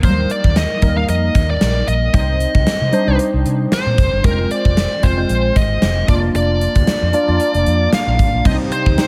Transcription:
0.02 D#2 F#3 A#3 D#4 A#4 C5, kick, closed hi-hat
0.09 G3
0.30 D5, closed hi-hat
0.44 D#2, kick
0.56 D#5, snare, closed hi-hat
0.82 D#2 G3 A#3 D#4 A#4, kick, closed hi-hat
0.96 G3 A#3 D#4 A#4 F5
1.08 F2 D#5, closed hi-hat
1.35 D#2, kick, closed hi-hat
1.50 D5
1.61 A#1, snare, closed hi-hat
1.88 A#1 D#5, closed hi-hat
2.13 C2 G3 C4 D#4 C5 D#5, kick, closed hi-hat
2.40 closed hi-hat
2.55 C2, kick
2.67 muted fingered electric bass stroke, snare, closed hi-hat
2.81 C3
2.92 G3 D4 D#4 C5, closed hi-hat
3.06 C2 G3 D4 D#4 C5
3.19 closed hi-hat
3.33 C2
3.45 C3, closed hi-hat
3.72 C5, snare, closed hi-hat
3.86 A#2
3.98 F1, kick, closed hi-hat
4.13 G1
4.24 F1 G#3 C4 F4 A#4, kick, closed hi-hat
4.31 C5
4.51 D5, closed hi-hat
4.65 F1, kick
4.77 snare, closed hi-hat
5.02 F1 G#3 C4 F4 C5, kick, closed hi-hat
5.17 G#3 C4 F4 C5
5.29 A#1, closed hi-hat
5.56 G#1 D#5, kick, closed hi-hat
5.82 F1, snare, closed hi-hat
6.08 F1 A#3 D4 F4 D5, kick, closed hi-hat
6.35 F1 D5, closed hi-hat
6.61 closed hi-hat
6.75 D2, kick, closed hi-hat
6.87 snare, closed hi-hat
7.02 F2
7.13 A#3 D4 F4 D5, closed hi-hat
7.27 F2 A#3 D4 F4 D5
7.40 closed hi-hat
7.54 F1, closed hi-hat
7.66 F2, closed hi-hat
7.93 F5, snare, closed hi-hat
8.07 A#1
8.19 G#1, kick, closed hi-hat
8.33 A#1
8.45 C2 C3 G3 C4 D4 D#4 G4 C5 D#5, kick, crash
8.52 D#4
8.72 C5, closed hi-hat
8.86 D#2, kick
8.97 G3 C4 D#4 C5, snare, closed hi-hat

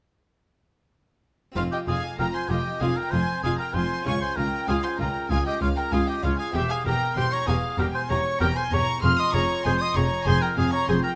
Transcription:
1.52 C4 F4 G#4 C5
1.56 F1 F2 F4 F5
1.72 G4 D#5 G5
1.87 F1 F2 F4 G#4 F5 G#5
2.18 F1 F2 F4 A#4 G5 A#5
2.34 C5 G#5 C6
2.49 F1 F2 F4 G4 D#5 G5
2.81 F1 F2 F4 G#4 F5 G#5
2.97 A#4 G5 A#5
3.11 F1 F2 F4 C5 G#5 C6
3.43 F1 F2 F4 G#4 F5 G#5
3.59 A#4 G5 A#5
3.74 F1 F2 F4 C5 G#5 C6
4.02 C#2 C#4 F4 G#4 C#6
4.06 C#2 F4 C#5 G#5
4.21 C5 G#5 C6
4.36 C#2 F4 A#4 G5 A#5
4.67 C#2 F4 G#4 F5 G#5
4.83 C5 G#5 C6
4.99 C#2 F4 A#4 G5 A#5
5.30 C#2 F4 G#4 F5 G#5
5.46 G4 D#5 G5
5.61 C#2 F4 C#5 F5
5.76 A#4 G5 A#5
5.91 C#2 F4 G#4 F5 G#5
6.07 G4 D#5 G5
6.22 C#2 F4 C#5 F5
6.38 G#4 F5 G#5
6.50 E2 C4 G4 C5 E5 G5
6.54 E1 E2 G4
6.69 G#4 F5 G#5
6.85 E1 E2 G4 A#4 G5 A#5
7.16 E1 E2 G4 C5 G5 C6
7.31 C#5 A#5 C#6
7.47 E1 E2 G4 G#4 F5 G#5
7.78 E1 E2 G4 A#4 G5 A#5
7.94 C5 G#5 C6
8.09 E1 E2 G4 C#5 A#5 C#6
8.40 E1 E2 G4 A#4 G5 A#5
8.56 C5 G#5 C6
8.71 E1 E2 G4 C#5 A#5 C#6
8.98 C4 G#4 C5
9.03 F1 F2 G#4 F5 C6 F6
9.18 D#5 C6 D#6
9.34 F1 F2 G#4 C#5 A#5 C#6
9.65 F1 F2 G#4 C5 G#5 C6
9.81 D#5 C6 D#6
9.96 F1 F2 G#4 C#5 A#5 C#6
10.26 F1 F2 G#4 C5 G#5 C6
10.42 A#4 G5 A#5
10.57 F1 F2 G#4 F5 G#5
10.72 C#5 A#5 C#6
10.87 F1 F2 G#4 C5 G#5 C6
11.03 A#4 G5 A#5

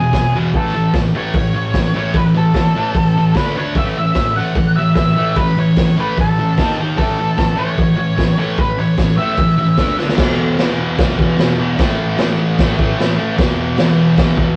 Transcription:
Already playing: E2 B2 G#4
0.13 E2 B2, kick, snare, open hi-hat
0.34 E2 B2 E3
0.54 A2 E3 A3 A4, kick, open hi-hat
0.74 A2 E3
0.94 A2 E3, kick, snare, open hi-hat
1.14 A2 E3 A3 C#5
1.33 A2 E3, kick, open hi-hat
1.54 A2 E3
1.73 A2 E3, kick, snare, open hi-hat
1.94 A2 E3 A3 C#5
2.14 A2 E3 B4, kick, open hi-hat
2.35 A2 E3 A4
2.54 A2 E3, kick, snare, open hi-hat
2.76 A2 E3 A3
2.95 A2 E3, kick, open hi-hat
3.18 A2 E3
3.35 D3 A3 D4 B4, kick, snare, open hi-hat
3.56 D3 A3 D4 C#5
3.75 A2 E3 A3 E5, kick, open hi-hat
3.98 A2 E3 E5
4.14 A2 E3, kick, snare, open hi-hat
4.36 A2 E3 A3 F#5
4.55 A2 E3, kick, open hi-hat
4.76 A2 E3 E5
4.95 A2 E3 E5, kick, snare, open hi-hat
5.17 A2 E3 A3
5.35 A2 E3 B4, kick, open hi-hat
5.57 A2 E3 C#5
5.77 A2 E3, kick, snare, open hi-hat
5.98 A2 E3 A3 B4
6.17 A2 E3 A4, kick, open hi-hat
6.39 A2 E3
6.57 D#3 A#3 D#4, kick, snare, open hi-hat
6.79 D#3 A#3 D#4
6.97 A2 E3 A3 A4, kick, open hi-hat
7.19 A2 E3
7.37 A2 E3, kick, snare, open hi-hat
7.56 A2 E3 A3 C#5
7.78 A2 E3, kick, open hi-hat
7.96 A2 E3
8.17 A2 E3, kick, snare, open hi-hat
8.38 A2 E3 A3 C#5
8.58 A2 E3 B4, kick, open hi-hat
8.77 A2 E3 C#5
8.97 A2 E3, kick, snare, open hi-hat
9.17 A2 E3 A3 E5
9.37 A2 E3, kick, open hi-hat
9.58 A2 E3
9.77 D3 A3 D4, kick, snare, open hi-hat
9.97 D3 A3 D4, snare
10.09 snare
10.17 E2 B2 E3, kick, snare, crash
10.58 E2 B2 E3, snare, crash
10.98 E2 B2 E3, kick, snare, crash
11.17 B2 E3, kick
11.37 E2 B2 E3, snare, crash
11.58 B2 E3
11.78 A2 E3 A3, kick, snare, crash
12.17 A2 E3 A3, snare, crash
12.59 A2 E3 A3, kick, snare, crash
12.78 E3 A3, kick
12.98 A2 E3 A3, snare, crash
13.17 E3 A3
13.36 E2 B2 E3, kick, snare, crash
13.77 E2 B2 E3, snare, crash
14.18 E2 B2 E3, kick, snare, crash
14.37 B2 E3, kick

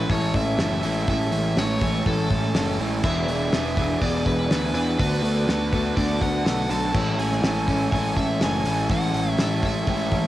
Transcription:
Already playing: G#3 A3 E4 A4 B4 C#5 E5 G#5 C#6
0.09 A1 A2 E3 G#3 C#4 E4 A4 C#5, kick, open hi-hat
0.34 A1 E5, kick, open hi-hat
0.58 F#1 A2 E3 G#3 A3 C#4 E4 A4, snare, open hi-hat
0.83 A1 A2 E3 G#3 A3 C#4 E4 A4, open hi-hat
1.08 A1 A2 E3 G#3 C#4 E4 A4 E5, kick, open hi-hat
1.32 A1, open hi-hat
1.57 A1 A2 E3 G#3 A3 C#4 E4 A4 C#5, snare, open hi-hat
1.81 A2 E3 G#3 A3 C#4 E4 A4, kick, open hi-hat
2.06 A1 A2 E3 G#3 C#4 E4 A4, kick, open hi-hat
2.30 A1, kick, open hi-hat
2.54 F#1 A2 E3 G#3 A3 C#4 E4 A4, snare, open hi-hat
2.78 A1 A2 E3 G#3 A3 C#4 E4 A4, open hi-hat
3.03 E1 E3 B3 D4 G#4 B4 E5 D6, kick, crash
3.27 E1, open hi-hat
3.52 E1 E3 B3 D4 G#4, snare, open hi-hat
3.77 E3 B3 D4 G#4, kick, open hi-hat
4.01 E1 E3 B3 D4 G#4 D5, kick, open hi-hat
4.26 E1 B4, kick, open hi-hat
4.50 D2 E3 B3 D4 G#4, snare, open hi-hat
4.74 E2 E3 B3 D4 G#4 B4, open hi-hat
4.98 D2 D3 A3 B3 D4 F#4 A4 B4 F#5 A5, kick, open hi-hat
5.23 D2, open hi-hat
5.47 D2 D3 A3 B3 D4 F#4 A4, snare, open hi-hat
5.71 D3 A3 B3 D4 F#4 A4, kick, open hi-hat
5.96 D2 D3 A3 B3 D4 F#4 A4 D5, kick, open hi-hat
6.21 D2 F#5, kick, open hi-hat
6.45 B1 D3 A3 B3 D4 F#4 A4, snare, open hi-hat
6.69 B1 D3 A3 B3 D4 F#4 A4 A5, open hi-hat
6.93 A1 A2 E3 G#3 C#4 E4 A4 C#5 E5 G#5 C#6, kick, crash
7.17 A1 G#5, open hi-hat
7.32 snare
7.42 A1 A2 E3 G#3 A3 C#4 E4 A4, snare, open hi-hat
7.67 A2 E3 G#3 A3 C#4 E4 A4, kick, open hi-hat
7.91 A1 A2 E3 G#3 C#4 E4 A4 G#5, kick, open hi-hat
8.17 A1 E5, kick, open hi-hat
8.40 F#1 A2 E3 G#3 A3 C#4 E4 A4 G#5, snare, open hi-hat
8.64 A1 A2 E3 G#3 A3 C#4 E4, open hi-hat
8.68 A4
8.89 A1 A2 E3 G#3 C#4 E4 A4 F#5, kick, open hi-hat
9.13 A1, open hi-hat
9.38 A1 A2 E3 G#3 A3 C#4 E4 A4 E5, snare, open hi-hat
9.62 A2 E3 G#3 A3 C#4 E4 A4, kick, open hi-hat
9.66 E5
9.87 A1 A2 E3 G#3 C#4 E4 A4, kick, open hi-hat
10.11 A1, kick, open hi-hat

